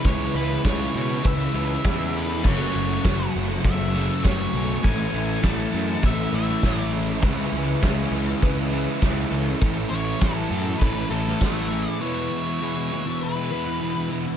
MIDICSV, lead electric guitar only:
0, 0, Header, 1, 2, 480
1, 0, Start_track
1, 0, Key_signature, 3, "major"
1, 0, Tempo, 598802
1, 33, Time_signature, 4, 2, 24, 8
1, 11518, End_track
2, 0, Start_track
2, 0, Title_t, "Lead electric guitar"
2, 0, Program_c, 0, 29
2, 49, Note_on_c, 0, 73, 99
2, 285, Note_off_c, 0, 73, 0
2, 289, Note_on_c, 0, 71, 82
2, 519, Note_off_c, 0, 71, 0
2, 523, Note_on_c, 0, 73, 93
2, 763, Note_off_c, 0, 73, 0
2, 773, Note_on_c, 0, 73, 95
2, 1012, Note_off_c, 0, 73, 0
2, 1015, Note_on_c, 0, 76, 113
2, 1734, Note_on_c, 0, 71, 71
2, 1749, Note_off_c, 0, 76, 0
2, 1974, Note_off_c, 0, 71, 0
2, 1985, Note_on_c, 0, 73, 90
2, 2661, Note_off_c, 0, 73, 0
2, 2938, Note_on_c, 0, 76, 97
2, 3400, Note_off_c, 0, 76, 0
2, 3403, Note_on_c, 0, 73, 86
2, 3872, Note_on_c, 0, 80, 110
2, 3895, Note_off_c, 0, 73, 0
2, 4369, Note_off_c, 0, 80, 0
2, 4373, Note_on_c, 0, 81, 108
2, 4855, Note_on_c, 0, 76, 92
2, 4858, Note_off_c, 0, 81, 0
2, 5083, Note_off_c, 0, 76, 0
2, 5092, Note_on_c, 0, 76, 92
2, 5429, Note_off_c, 0, 76, 0
2, 5429, Note_on_c, 0, 74, 92
2, 5531, Note_off_c, 0, 74, 0
2, 7934, Note_on_c, 0, 73, 114
2, 8173, Note_on_c, 0, 69, 92
2, 8188, Note_off_c, 0, 73, 0
2, 8644, Note_off_c, 0, 69, 0
2, 8647, Note_on_c, 0, 71, 91
2, 8879, Note_off_c, 0, 71, 0
2, 8899, Note_on_c, 0, 69, 76
2, 9167, Note_on_c, 0, 76, 102
2, 9351, Note_off_c, 0, 69, 0
2, 9536, Note_off_c, 0, 76, 0
2, 9536, Note_on_c, 0, 74, 102
2, 9632, Note_on_c, 0, 73, 106
2, 9651, Note_off_c, 0, 74, 0
2, 10610, Note_off_c, 0, 73, 0
2, 10613, Note_on_c, 0, 71, 75
2, 11292, Note_off_c, 0, 71, 0
2, 11518, End_track
0, 0, End_of_file